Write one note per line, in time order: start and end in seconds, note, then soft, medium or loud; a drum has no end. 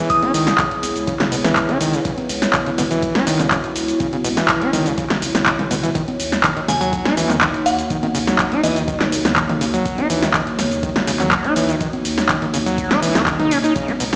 0.00 0.24 E3 medium
0.00 5.91 B3 medium
0.00 5.91 E4 medium
0.00 2.01 G#4 medium
0.00 5.91 C#5 medium
0.10 0.78 D#6 medium
0.10 kick loud
0.10 closed hi-hat medium
0.10 ride medium
0.10 shaker soft
0.22 0.32 C#4 loud
0.22 closed hi-hat soft
0.22 high conga medium
0.34 0.51 C#2 loud
0.34 0.48 D#3 medium
0.34 open hi-hat loud
0.34 ride medium
0.34 shaker medium
0.47 0.53 C#3 loud
0.47 snare medium
0.47 closed hi-hat medium
0.47 shaker soft
0.58 0.66 C#3 medium
0.58 kick loud
0.58 clap loud
0.58 closed hi-hat medium
0.58 ride medium
0.58 shaker soft
0.71 closed hi-hat soft
0.83 0.91 C#2 medium
0.83 open hi-hat medium
0.83 ride medium
0.83 high conga soft
0.83 shaker medium
0.96 1.12 C#2 medium
0.96 closed hi-hat soft
0.96 shaker soft
1.07 1.14 C#3 medium
1.07 kick loud
1.07 closed hi-hat medium
1.07 ride medium
1.07 shaker soft
1.20 1.24 C#3 medium
1.20 snare medium
1.20 clap soft
1.20 closed hi-hat soft
1.20 mid tom medium
1.32 1.40 C#2 medium
1.32 1.36 B2 medium
1.32 open hi-hat loud
1.32 ride medium
1.32 shaker medium
1.44 1.60 C#2 loud
1.44 1.70 E3 medium
1.44 snare medium
1.44 closed hi-hat medium
1.44 mid tom medium
1.44 high conga medium
1.44 shaker soft
1.56 kick loud
1.56 clap loud
1.56 closed hi-hat medium
1.56 ride medium
1.56 shaker soft
1.69 1.78 C#4 loud
1.69 closed hi-hat soft
1.69 mid tom medium
1.80 1.97 C#2 medium
1.80 1.95 D#3 medium
1.80 open hi-hat loud
1.80 ride medium
1.80 shaker medium
1.93 2.00 C#3 loud
1.93 closed hi-hat medium
1.93 shaker soft
2.05 2.12 C#3 medium
2.05 5.91 F#4 medium
2.05 kick loud
2.05 closed hi-hat medium
2.05 ride medium
2.05 shaker soft
2.18 closed hi-hat soft
2.18 high conga medium
2.29 2.46 C#2 loud
2.29 open hi-hat loud
2.29 ride medium
2.29 shaker medium
2.42 snare medium
2.42 closed hi-hat medium
2.42 shaker soft
2.53 2.61 C#3 medium
2.53 kick loud
2.53 clap loud
2.53 closed hi-hat medium
2.53 ride medium
2.53 shaker soft
2.66 2.70 C#3 medium
2.66 closed hi-hat soft
2.78 2.87 C#2 medium
2.78 2.82 B2 medium
2.78 snare soft
2.78 open hi-hat medium
2.78 mid tom medium
2.78 ride medium
2.78 high conga soft
2.78 shaker medium
2.91 3.07 C#2 medium
2.91 3.17 E3 medium
2.91 closed hi-hat medium
2.91 shaker soft
3.02 kick loud
3.02 closed hi-hat medium
3.02 ride medium
3.02 shaker soft
3.15 3.25 C#4 loud
3.15 snare medium
3.15 closed hi-hat soft
3.27 3.35 C#2 medium
3.27 3.41 D#3 medium
3.27 snare soft
3.27 open hi-hat loud
3.27 ride medium
3.27 shaker medium
3.39 3.55 C#2 medium
3.39 3.46 C#3 loud
3.39 clap soft
3.39 closed hi-hat medium
3.39 mid tom medium
3.39 high conga medium
3.39 shaker soft
3.51 3.58 C#3 medium
3.51 kick loud
3.51 clap loud
3.51 closed hi-hat medium
3.51 ride medium
3.51 shaker soft
3.64 closed hi-hat soft
3.76 3.92 C#2 medium
3.76 open hi-hat medium
3.76 ride medium
3.76 shaker medium
3.88 closed hi-hat medium
3.88 shaker soft
4.00 4.07 C#3 medium
4.00 kick loud
4.00 closed hi-hat medium
4.00 ride medium
4.00 shaker soft
4.13 4.17 C#3 medium
4.13 closed hi-hat soft
4.13 high conga medium
4.24 4.41 C#2 loud
4.24 4.29 B2 medium
4.24 open hi-hat loud
4.24 ride medium
4.24 shaker medium
4.37 4.63 E3 medium
4.37 snare medium
4.37 closed hi-hat medium
4.37 shaker soft
4.48 kick loud
4.48 clap loud
4.48 closed hi-hat medium
4.48 ride medium
4.48 shaker soft
4.62 4.71 C#4 loud
4.62 closed hi-hat soft
4.73 4.82 C#2 medium
4.73 4.87 D#3 medium
4.73 open hi-hat medium
4.73 mid tom medium
4.73 ride medium
4.73 high conga soft
4.73 shaker medium
4.86 5.02 C#2 medium
4.86 4.92 C#3 loud
4.86 closed hi-hat medium
4.86 shaker soft
4.98 5.05 C#3 medium
4.98 kick loud
4.98 closed hi-hat medium
4.98 ride medium
4.98 shaker soft
5.10 snare medium
5.10 clap soft
5.10 closed hi-hat soft
5.10 mid tom medium
5.22 5.30 C#2 loud
5.22 open hi-hat loud
5.22 ride medium
5.22 shaker medium
5.35 5.51 C#2 medium
5.35 snare medium
5.35 closed hi-hat medium
5.35 mid tom loud
5.35 high conga medium
5.35 shaker soft
5.46 5.53 C#3 medium
5.46 kick loud
5.46 clap loud
5.46 closed hi-hat medium
5.46 high tom medium
5.46 ride medium
5.46 shaker soft
5.59 5.63 C#3 medium
5.59 closed hi-hat soft
5.59 mid tom loud
5.59 high tom medium
5.71 5.87 C#2 medium
5.71 5.75 B2 medium
5.71 open hi-hat medium
5.71 mid tom medium
5.71 ride medium
5.71 shaker medium
5.83 5.90 E3 medium
5.83 closed hi-hat medium
5.83 mid tom medium
5.83 shaker soft
5.95 6.02 D#3 medium
5.95 13.72 A#3 medium
5.95 13.72 D#4 medium
5.95 13.72 F#4 medium
5.95 14.16 C#5 medium
5.95 kick loud
5.95 closed hi-hat medium
5.95 ride medium
5.95 shaker soft
6.08 closed hi-hat soft
6.08 high conga medium
6.20 6.36 D#2 loud
6.20 open hi-hat loud
6.20 ride medium
6.20 shaker medium
6.32 snare medium
6.32 closed hi-hat medium
6.32 shaker soft
6.44 6.51 D#3 medium
6.44 kick loud
6.44 clap loud
6.44 closed hi-hat medium
6.44 ride medium
6.44 shaker soft
6.57 6.61 D#3 medium
6.57 closed hi-hat soft
6.68 6.77 D#2 medium
6.68 6.73 C#3 medium
6.68 6.77 G#5 medium
6.68 snare soft
6.68 open hi-hat medium
6.68 mid tom medium
6.68 ride medium
6.68 high conga soft
6.68 shaker medium
6.81 6.97 D#2 medium
6.81 7.07 F#3 medium
6.81 6.89 G#5 medium
6.81 closed hi-hat medium
6.81 shaker soft
6.93 kick loud
6.93 closed hi-hat medium
6.93 ride medium
6.93 shaker soft
7.05 7.15 D#4 loud
7.05 snare medium
7.05 closed hi-hat soft
7.17 7.26 D#2 medium
7.17 7.31 E3 medium
7.17 snare soft
7.17 open hi-hat loud
7.17 ride medium
7.17 shaker medium
7.29 7.46 D#2 loud
7.29 7.36 D#3 loud
7.29 clap soft
7.29 closed hi-hat medium
7.29 mid tom loud
7.29 high conga medium
7.29 shaker soft
7.41 7.49 D#3 medium
7.41 kick loud
7.41 clap loud
7.41 closed hi-hat medium
7.41 ride medium
7.41 shaker soft
7.54 closed hi-hat soft
7.66 7.82 D#2 medium
7.66 7.81 F#5 medium
7.66 open hi-hat medium
7.66 ride medium
7.66 shaker medium
7.79 closed hi-hat medium
7.79 shaker soft
7.90 7.97 D#3 medium
7.90 kick loud
7.90 closed hi-hat medium
7.90 ride medium
7.90 shaker soft
8.03 8.07 D#3 medium
8.03 closed hi-hat soft
8.03 high conga medium
8.15 8.31 D#2 loud
8.15 8.19 C#3 medium
8.15 open hi-hat loud
8.15 ride medium
8.15 shaker medium
8.27 8.53 F#3 medium
8.27 snare medium
8.27 closed hi-hat medium
8.27 shaker soft
8.39 kick loud
8.39 clap loud
8.39 closed hi-hat medium
8.39 ride medium
8.39 shaker soft
8.52 8.61 D#4 loud
8.52 closed hi-hat soft
8.63 8.72 D#2 medium
8.63 8.78 E3 medium
8.63 9.12 D#5 medium
8.63 open hi-hat loud
8.63 ride medium
8.63 high conga soft
8.63 shaker medium
8.76 8.92 D#2 medium
8.76 8.83 D#3 loud
8.76 closed hi-hat medium
8.76 shaker soft
8.88 8.95 D#3 medium
8.88 kick loud
8.88 closed hi-hat medium
8.88 ride medium
8.88 shaker soft
9.00 snare medium
9.00 clap soft
9.00 closed hi-hat soft
9.00 mid tom medium
9.12 9.21 D#2 medium
9.12 open hi-hat loud
9.12 ride medium
9.12 shaker medium
9.25 9.41 D#2 loud
9.25 snare medium
9.25 closed hi-hat medium
9.25 mid tom loud
9.25 high conga medium
9.25 shaker soft
9.36 9.44 D#3 medium
9.36 kick loud
9.36 clap loud
9.36 closed hi-hat soft
9.36 ride medium
9.36 shaker soft
9.49 9.53 D#3 medium
9.49 closed hi-hat soft
9.49 mid tom loud
9.61 9.78 D#2 medium
9.61 9.65 C#3 medium
9.61 open hi-hat loud
9.61 ride medium
9.61 shaker medium
9.74 10.00 F#3 medium
9.74 closed hi-hat medium
9.74 shaker soft
9.85 kick loud
9.85 closed hi-hat medium
9.85 ride medium
9.85 shaker soft
9.98 10.08 D#4 loud
9.98 closed hi-hat soft
9.98 high conga medium
10.10 10.26 D#2 loud
10.10 10.24 E3 medium
10.10 open hi-hat loud
10.10 ride medium
10.10 shaker medium
10.23 10.29 D#3 loud
10.23 snare medium
10.23 closed hi-hat medium
10.23 shaker soft
10.34 10.41 D#3 medium
10.34 kick loud
10.34 clap loud
10.34 closed hi-hat medium
10.34 ride medium
10.34 shaker soft
10.47 closed hi-hat soft
10.58 10.67 D#2 medium
10.58 snare soft
10.58 open hi-hat loud
10.58 mid tom medium
10.58 ride medium
10.58 high conga soft
10.58 shaker medium
10.71 10.87 D#2 medium
10.71 closed hi-hat medium
10.71 shaker soft
10.83 10.90 D#3 medium
10.83 kick loud
10.83 closed hi-hat medium
10.83 ride medium
10.83 shaker soft
10.96 11.00 D#3 medium
10.96 snare medium
10.96 closed hi-hat soft
11.07 11.16 D#2 medium
11.07 11.12 C#3 medium
11.07 snare soft
11.07 open hi-hat loud
11.07 ride medium
11.07 shaker medium
11.20 11.36 D#2 loud
11.20 11.46 F#3 medium
11.20 clap soft
11.20 closed hi-hat soft
11.20 mid tom medium
11.20 high conga medium
11.20 shaker soft
11.31 kick loud
11.31 clap loud
11.31 closed hi-hat soft
11.31 ride medium
11.31 shaker soft
11.44 11.54 D#4 loud
11.44 closed hi-hat soft
11.56 11.73 D#2 medium
11.56 11.70 E3 medium
11.56 open hi-hat loud
11.56 ride medium
11.56 shaker medium
11.69 11.75 D#3 loud
11.69 closed hi-hat medium
11.69 shaker soft
11.81 11.88 D#3 medium
11.81 kick loud
11.81 closed hi-hat medium
11.81 ride medium
11.81 shaker soft
11.93 closed hi-hat soft
11.93 high conga medium
12.05 12.21 D#2 loud
12.05 open hi-hat loud
12.05 ride medium
12.05 shaker medium
12.18 snare medium
12.18 closed hi-hat medium
12.18 shaker soft
12.29 12.36 D#3 medium
12.29 kick loud
12.29 clap loud
12.29 closed hi-hat medium
12.29 ride medium
12.29 shaker soft
12.42 12.46 D#3 medium
12.42 closed hi-hat soft
12.54 12.62 D#2 medium
12.54 12.58 C#3 medium
12.54 open hi-hat loud
12.54 ride medium
12.54 high conga soft
12.54 shaker medium
12.66 12.82 D#2 medium
12.66 12.92 F#3 medium
12.66 closed hi-hat medium
12.66 shaker soft
12.78 kick loud
12.78 closed hi-hat soft
12.78 ride medium
12.78 shaker soft
12.90 13.00 D#4 loud
12.90 snare medium
12.90 clap soft
12.90 closed hi-hat soft
12.90 mid tom medium
13.02 13.11 C#2 loud
13.02 13.17 E3 loud
13.02 open hi-hat loud
13.02 ride medium
13.02 shaker medium
13.15 13.31 D#2 medium
13.15 13.22 A#3 medium
13.15 snare medium
13.15 closed hi-hat medium
13.15 mid tom medium
13.15 high conga medium
13.15 shaker soft
13.26 13.37 D#3 medium
13.26 kick loud
13.26 clap loud
13.26 closed hi-hat soft
13.26 ride medium
13.26 shaker soft
13.40 13.53 D#4 medium
13.40 closed hi-hat soft
13.40 mid tom loud
13.51 13.68 D#1 medium
13.51 13.58 C#4 loud
13.51 open hi-hat loud
13.51 ride medium
13.51 shaker medium
13.64 13.74 D#4 medium
13.64 closed hi-hat soft
13.64 shaker soft
13.76 13.90 C#3 medium
13.76 14.16 B3 medium
13.76 14.16 E4 medium
13.76 14.16 G#4 medium
13.76 kick loud
13.76 closed hi-hat medium
13.76 ride medium
13.76 shaker soft
13.88 13.92 C#4 loud
13.88 closed hi-hat soft
13.88 high conga medium
14.00 14.16 C#2 loud
14.00 14.04 B2 medium
14.00 open hi-hat loud
14.00 ride medium
14.00 shaker medium
14.13 14.16 E3 medium